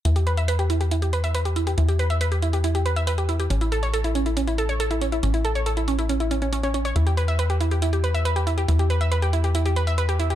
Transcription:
<<
  \new Staff \with { instrumentName = "Synth pluck" } { \time 4/4 \key e \minor \tempo 4 = 139 e'16 g'16 b'16 e''16 b'16 g'16 e'16 g'16 e'16 g'16 b'16 e''16 b'16 g'16 e'16 g'16 | e'16 g'16 b'16 e''16 b'16 g'16 e'16 g'16 e'16 g'16 b'16 e''16 b'16 g'16 e'16 g'16 | cis'16 e'16 a'16 cis''16 a'16 e'16 cis'16 e'16 cis'16 e'16 a'16 cis''16 a'16 e'16 cis'16 e'16 | cis'16 e'16 a'16 cis''16 a'16 e'16 cis'16 e'16 cis'16 e'16 cis'16 cis'16 cis'16 cis'16 cis'16 cis''16 |
e'16 g'16 b'16 e''16 b'16 g'16 e'16 g'16 e'16 g'16 b'16 e''16 b'16 g'16 e'16 g'16 | e'16 g'16 b'16 e''16 b'16 g'16 e'16 g'16 e'16 g'16 b'16 e''16 b'16 g'16 e'16 g'16 | }
  \new Staff \with { instrumentName = "Analog synth bass" } { \clef bass \time 4/4 \key e \minor e,1 | e,1 | a,,1 | a,,1 |
e,1 | e,1 | }
  \new DrumStaff \with { instrumentName = "Drums" } \drummode { \time 4/4 hh16 hh16 hh16 hh16 hh16 hh16 hh16 hh16 hh16 hh16 hh16 hh16 hh16 hh16 hh16 hh16 | hh16 hh16 hh16 hh16 hh16 hh16 hh16 hh16 hh16 hh16 hh16 hh16 hh16 hh16 hh16 hh16 | hh16 hh16 hh16 hh16 hh16 hh16 hh16 hh16 hh16 hh16 hh16 hh16 hh16 hh16 hh16 hh16 | hh16 hh16 hh16 hh16 hh16 hh16 hh16 hh16 hh16 hh16 hh16 hh16 hh16 hh16 hh16 hh16 |
hh16 hh16 hh16 hh16 hh16 hh16 hh16 hh16 hh16 hh16 hh16 hh16 hh16 hh16 hh16 hh16 | hh16 hh16 hh16 hh16 hh16 hh16 hh16 hh16 hh16 hh16 hh16 hh16 hh16 hh16 hh16 hh16 | }
>>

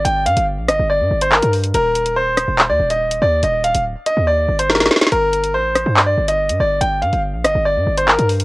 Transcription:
<<
  \new Staff \with { instrumentName = "Grand piano" } { \time 4/4 \key g \minor \tempo 4 = 142 g''8 f''8 r8 ees''8 d''8. c''16 bes'8 r8 | bes'4 c''4~ c''16 d''8 ees''8. d''8 | ees''8 f''8 r8 ees''8 d''8. c''16 bes'8 r8 | bes'4 c''4~ c''16 d''8 ees''8. d''8 |
g''8 f''8 r8 ees''8 d''8. c''16 bes'8 r8 | }
  \new Staff \with { instrumentName = "808-style bass" } { \clef bass \time 4/4 \key g \minor g,,8 g,16 g,,8 bes,,16 g,,16 g,,8 g,16 g,,8. g,8. | ees,,4.~ ees,,16 ees,,8 ees,16 ees,,4 ees,8 | ees,,8. d,,8 r8 ees,8. g,,4 r8 | g,,4 a,,8. g,8. g,,8. g,16 g,,8 |
g,,8 g,16 g,,8 bes,,16 g,,16 g,,8 g,16 g,,8. g,8. | }
  \new DrumStaff \with { instrumentName = "Drums" } \drummode { \time 4/4 hh8 hh16 hh16 r8 <hh ss>8 r8. hh16 hc16 hh16 hho16 hh16 | hh8 hh16 hh16 r8 <hh ss>8 hc8. hh16 r16 hh8. | hh8 hh16 hh16 r8 hh8 r8. hh16 sn32 sn32 <hh sn>32 sn32 sn32 sn32 <hh sn>32 sn32 | hh8 hh16 hh16 r8 <hh ss>8 hc8. hh16 r16 hh8. |
hh8 hh16 hh16 r8 <hh ss>8 r8. hh16 hc16 hh16 hho16 hh16 | }
>>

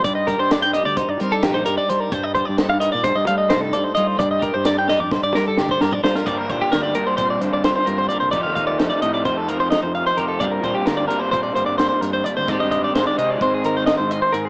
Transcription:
<<
  \new Staff \with { instrumentName = "Clean electric guitar" } { \time 9/8 \key g \minor \tempo 4. = 87 d''16 ees''16 bes'16 c''16 d''16 g''16 ees''16 d''16 c''16 d''16 bes'16 a'16 g'16 c''16 bes'16 d''16 c''16 bes'16 | c''16 ees''16 c''16 d''16 c''16 f''16 ees''16 d''16 c''16 ees''16 f''16 ees''16 c''16 a'16 d''16 c''16 ees''16 c''16 | d''16 ees''16 bes'16 c''16 d''16 g''16 ees''16 d''16 c''16 d''16 bes'16 a'16 g'16 c''16 bes'16 d''16 c''16 bes'16 | d''16 bes'16 c''16 g'16 bes'16 d''16 bes'16 c''16 c''16 d''16 c''16 d''16 c''16 c''16 bes'16 c''16 d''16 c''16 |
d''16 f''16 f''16 d''16 c''16 d''16 ees''16 d''16 c''16 a'16 bes'16 c''16 ees''16 c''16 f''16 c''16 bes'16 a'16 | d''16 bes'16 c''16 g'16 bes'16 d''16 bes'16 c''16 c''16 d''16 c''16 d''16 c''16 c''16 bes'16 c''16 d''16 c''16 | d''16 ees''16 ees''16 d''16 c''16 d''16 ees''16 d''16 c''16 aes'16 bes'16 c''16 ees''16 c''16 ees''16 c''16 bes'16 aes'16 | }
  \new Staff \with { instrumentName = "Clean electric guitar" } { \time 9/8 \key g \minor << { r4 d'8 g'8 ees'8 c'16 d'16 ees'4. | r4 ees'8 bes'8 r4 ees'8 a'8 f'8 | r4 d'8 g'16 bes'16 r4 d'8 g'16 bes'16 f'8 | bes'8 d'16 f'4~ f'16 c'4 f'8 c'8 bes'8 |
g'8 ees'2~ ees'8 ees'4 g'8 | <g c' f' bes'>8 f'4. c'2~ c'8 | <c' d' g'>2 c'4. c'8 aes'8 | } \\ { g,8 g2. g8 g,8 | g,8 g4. g,8 a2 | g,8 g4. g,8 g2 | g,4 g4. d4. g,8 |
f4 a4. f4. f8 | g,4 g4. d4. g,8 | r4 aes4. ees4. aes,8 | } >> }
  \new Staff \with { instrumentName = "Overdriven electric guitar" } { \clef bass \time 9/8 \key g \minor r1 r8 | r1 r8 | r1 r8 | <g, d g bes d'>4. <g, d g bes d'>2. |
<f, c ees a ees'>4. <f, c ees a ees'>2. | <g, d g bes d'>4. <g, d g bes d'>2. | <aes, ees aes c' ees'>4. <aes, ees aes c' ees'>2. | }
  \new Staff \with { instrumentName = "Fingered electric bass" } { \clef bass \time 9/8 \key g \minor g,8. g,4 d,16 r16 g,16 g8 bes,,8 g,16 r16 g8 | g,8. g,4 bes,16 g,16 g,16 g8 c,8 g,16 r16 g8 | g,8. g,4 f,16 g,16 g,16 g8 d,8 g,16 r16 g8 | g,8 bes,16 r16 d,8 r8 bes,8 g,16 g,8 r16 g,8 r16 c,16 |
f,16 ees,8. f,16 r16 a,8 f,4~ f,16 f,8 r16 f,8 | g,8 bes,16 r16 d,8 r8 bes,8 g,16 g,8 r16 g,8 r16 d,16 | aes,16 g,8. aes,16 r16 c8 aes,4~ aes,16 aes,8 r16 aes,8 | }
  \new DrumStaff \with { instrumentName = "Drums" } \drummode { \time 9/8 <hh bd>8 <hh bd>8 <hh sn>8 <hh sn>8 <hh bd>8 hh8 <hh sn>8 <hh sn>8 hh8 | <hh bd>8 <hh bd>8 <hh sn>8 hh8 <hh bd sn>8 hh8 <hh sn>8 hh8 hh8 | <hh bd>8 <hh bd>8 <hh sn>8 sn8 <bd sn>8 sn8 sn16 bd16 sn16 tomfh16 sn16 sn16 | <hh bd>8 <hh bd>8 <hh sn>8 hh8 <hh bd>8 hh8 <hh sn>8 hh8 hh8 |
<hh bd>8 <hh bd>8 <hh sn>8 hh8 <hh bd>8 hh8 <hh sn>8 hh8 hh8 | <hh bd>8 <hh bd>8 <hh sn>8 hh8 <hh bd>8 hh8 <hh sn>8 <hh sn>8 hh8 | <hh bd>8 <hh bd>8 <hh sn>8 hh8 <hh bd>8 hh8 <hh sn>8 hh8 hh8 | }
>>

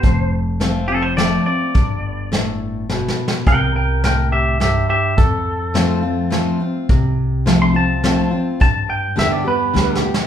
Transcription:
<<
  \new Staff \with { instrumentName = "Clean electric guitar" } { \time 3/4 \key f \lydian \tempo 4 = 105 c''8 r4 a'16 c''16 d''8 d''8~ | d''2~ d''8 r8 | <bes' g''>8 <bes' g''>8 <bes' g''>8 <g' e''>8 <g' e''>8 <g' e''>8 | a'2 r4 |
r4 r16 c'''16 a''4. | a''8 g''8 e''16 d''16 b'4 r8 | }
  \new Staff \with { instrumentName = "Steel-string acoustic guitar" } { \time 3/4 \key f \lydian << { r4 <f a c' f'>8 <c' f'>8 <f a c' f'>8 <c' f'>8 | r2. | r2. | r4 <f a c' f'>8 <c' f'>8 <f a c' f'>8 <c' f'>8 |
r4 <f a c' f'>8 <c' f'>8 <f a c' f'>8 <c' f'>8 | r4 <d g b g'>8 <b g'>8 <d g b g'>8 <b g'>8 | } \\ { f,2 r4 | g,4 a,4 b,4 | c4 a,4 g,4 | f,2 r4 |
c2 r4 | g,2 r4 | } >> }
  \new Staff \with { instrumentName = "Upright bass" } { \clef bass \time 3/4 \key f \lydian f,,2. | g,,2. | c,2. | f,2. |
c,2. | g,4 e,4 d,4 | }
  \new DrumStaff \with { instrumentName = "Drums" } \drummode { \time 3/4 <hh bd>4 <hh sn>4 <hh sn>4 | <hh bd>4 <hh sn>4 \tuplet 3/2 { sn8 sn8 sn8 } | <hh bd>4 <hh sn>4 <hh sn>4 | <hh bd>4 <hh sn>4 <hh sn>4 |
<hh bd>4 <hh sn>4 <hh sn>4 | <hh bd>4 <hh sn>4 \tuplet 3/2 { sn8 sn8 sn8 } | }
>>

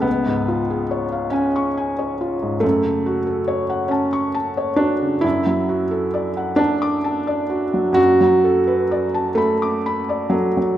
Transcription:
\new Staff \with { instrumentName = "Felt piano" } { \time 6/8 \key fis \minor \tempo 4. = 45 << { cis,16 gis,16 eis'16 gis'16 cis''16 eis''16 gis''16 cis'''16 gis''16 cis''16 eis'16 gis,16 | fis,16 cis16 fis'16 a'16 cis''16 fis''16 a''16 cis'''16 a''16 cis''16 fis'16 cis16 | \key b \dorian fis,16 fis16 fis'16 a'16 d''16 fis''16 a''16 d'''16 a''16 d''16 fis'16 fis16 | fis,16 fis16 a'16 b'16 d''16 a''16 b''16 d'''16 b''16 d''16 a'16 fis16 | } \\ { b4. cis'4. | a4. cis'8 r8 d'8 | e'4. d'4. | fis'4. a4 fis8 | } >> }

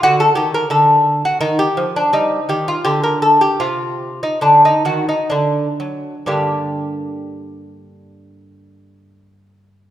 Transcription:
<<
  \new Staff \with { instrumentName = "Lute" } { \time 4/4 \key g \minor \tempo 4 = 71 fis'16 a'16 g'16 bes'16 a'8. fis'16 ees'16 g'8 d'16 ees'8 g'16 f'16 | g'16 bes'16 a'16 g'16 f'8. ees'16 d'16 ees'16 fis'16 ees'16 d'4 | <g, d bes d' g'>1 | }
  \new Staff \with { instrumentName = "Lute" } { \clef bass \time 4/4 \key g \minor d8 ees8 d4 ees8 f8 g8 ees8 | d4 c4 d8 ees8 d8 fis8 | r1 | }
>>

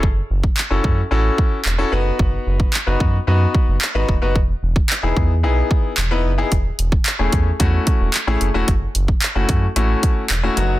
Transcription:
<<
  \new Staff \with { instrumentName = "Grand piano" } { \time 4/4 \key fis \dorian \tempo 4 = 111 r4 r16 <cis' e' fis' a'>8 r16 <cis' e' fis' a'>4 r16 <cis' e' fis' a'>16 <b dis' fis' b'>8~ | <b dis' fis' b'>4 r16 <b dis' fis' b'>8 r16 <b dis' fis' b'>4 r16 <b dis' fis' b'>16 r16 <b dis' fis' b'>16 | r4 r16 <b dis' e' gis'>8 r16 <b dis' e' gis'>4 r16 <b dis' e' b'>16 r16 <b dis' e' gis'>16 | r4 r16 <a cis' e' gis'>8 r16 <a cis' e' fis'>4 r16 <a cis' e' gis'>16 r16 <a cis' e' fis'>16 |
r4 r16 <a cis' e' fis'>8 r16 <a cis' e' fis'>4 r16 <a cis' e' fis'>16 <fis b dis' fis'>8 | }
  \new Staff \with { instrumentName = "Analog synth bass" } { \clef bass \time 4/4 \key fis \dorian fis,,8 fis,,8 r16 fis,,16 fis,8 a,,8 r8 e,,8 fis,,8 | fis,,8 fis,,8 r16 fis,,16 fis,8 fis,8 r16 fis,,16 r16 gis,,16 e,,16 fis,,16 | e,,8 e,,8 r16 e,,16 e,8 b,,8 r8 e,,8 fis,,8 | e,,8 e,,8 r16 e,,16 e,8 e,8 r16 e,,16 r16 a,,16 fis,,16 e,,16 |
fis,,8 fis,,8 r16 fis,,16 fis,8 a,,8 r8 e,,8 fis,,8 | }
  \new DrumStaff \with { instrumentName = "Drums" } \drummode { \time 4/4 bd8. bd16 hc8 bd8 r8 bd8 hc4 | bd8. bd16 hc8 bd8 r8 bd8 hc8 bd8 | bd8. bd16 hc8 bd8 r8 bd8 hc4 | <hh bd>8 hh16 bd16 <hc hh>8 <hh bd>8 <hh bd>8 <hh bd>8 <hc hh>8 hh8 |
<hh bd>8 hh16 bd16 <hc hh>8 <hh bd>8 hh8 <hh bd>8 <hc hh>8 hh8 | }
>>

